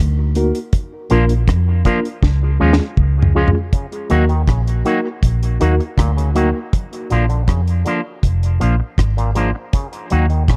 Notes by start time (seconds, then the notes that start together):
0.00 D2
0.35 A#3 D#4 F#4 A#4, closed hi-hat
0.55 closed hi-hat
0.73 kick, closed hi-hat
1.10 A#1 F3 A#3 D4 F4 A#4, closed hi-hat
1.29 closed hi-hat
1.48 F2, kick, cross-stick, closed hi-hat
1.85 F3 A#3 D4 F4 A#4, kick, closed hi-hat
2.05 closed hi-hat
2.23 C#2, kick, snare
2.43 F4 G#4
2.60 D#2 F3 G#3 C#4 F4 G#4
2.73 snare
2.80 muted clean electric guitar stroke
2.97 C#2, kick
3.22 floor tom
3.35 F3 G#3 C#4 F4 G#4
3.48 floor tom
3.55 muted clean electric guitar stroke
3.73 C#3, kick, closed hi-hat
3.92 closed hi-hat
4.10 D#2 D#3 F#3 A#3 D#4 F#4 A#4, closed hi-hat
4.29 D#3, closed hi-hat
4.47 A#1 C#3, kick, cross-stick, closed hi-hat
4.67 closed hi-hat
4.85 D#3 F#3 A#3 D#4 F#4 A#4, closed hi-hat
5.23 A#1, kick, closed hi-hat
5.43 closed hi-hat
5.60 D#2 F#3 A#3 D#4 F#4 A#4, closed hi-hat
5.80 muted clean electric guitar stroke, closed hi-hat
5.97 D2 A#2, kick, cross-stick, closed hi-hat
6.17 C#3, closed hi-hat
6.35 D#3 F#3 A#3 D#4 F#4 A#4, closed hi-hat
6.73 kick, closed hi-hat
6.93 closed hi-hat
7.10 A#1 D3 F3 A#3 D4 F4, closed hi-hat
7.29 D3, closed hi-hat
7.47 F2 C#3, kick, cross-stick, closed hi-hat
7.68 closed hi-hat
7.85 D3 F3 A#3 D4 F4, closed hi-hat
8.23 F1, kick, closed hi-hat
8.43 closed hi-hat
8.60 A#1 F3 A#3 D4 F4, closed hi-hat
8.80 muted clean electric guitar stroke
8.98 G#1, kick, cross-stick, closed hi-hat
9.17 A#2, closed hi-hat
9.35 G#2 F3 A#3 D4 F4, closed hi-hat
9.55 muted clean electric guitar stroke
9.73 C#3, kick, closed hi-hat
9.93 closed hi-hat
10.10 D#2 D#3 F#3 A#3 D#4 F#4, closed hi-hat
10.30 D#3, closed hi-hat
10.48 A#1 C#3, kick, cross-stick, closed hi-hat